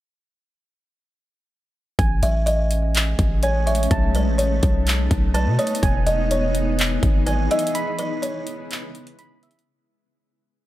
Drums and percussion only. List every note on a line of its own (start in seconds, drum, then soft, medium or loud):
1.99 kick loud
1.99 closed hi-hat medium
2.23 closed hi-hat medium
2.47 closed hi-hat medium
2.71 closed hi-hat medium
2.95 clap loud
2.95 closed hi-hat medium
3.19 kick medium
3.19 closed hi-hat medium
3.43 closed hi-hat medium
3.67 closed hi-hat soft
3.75 closed hi-hat medium
3.83 closed hi-hat medium
3.91 kick loud
3.91 closed hi-hat medium
4.15 closed hi-hat medium
4.39 closed hi-hat medium
4.63 kick medium
4.63 closed hi-hat medium
4.87 clap loud
4.87 closed hi-hat medium
5.11 kick medium
5.11 closed hi-hat medium
5.35 closed hi-hat medium
5.59 closed hi-hat soft
5.67 closed hi-hat medium
5.75 closed hi-hat medium
5.83 kick loud
5.83 closed hi-hat medium
6.07 closed hi-hat medium
6.31 closed hi-hat medium
6.55 closed hi-hat medium
6.79 clap loud
6.79 closed hi-hat medium
7.03 kick medium
7.03 closed hi-hat medium
7.27 closed hi-hat medium
7.51 closed hi-hat soft
7.59 closed hi-hat medium
7.67 closed hi-hat medium
7.75 closed hi-hat medium
7.99 closed hi-hat medium
8.23 closed hi-hat medium
8.47 closed hi-hat medium
8.71 clap loud
8.71 closed hi-hat medium
8.95 closed hi-hat soft
9.07 closed hi-hat medium
9.19 closed hi-hat medium
9.43 closed hi-hat soft
9.51 closed hi-hat medium
9.59 closed hi-hat medium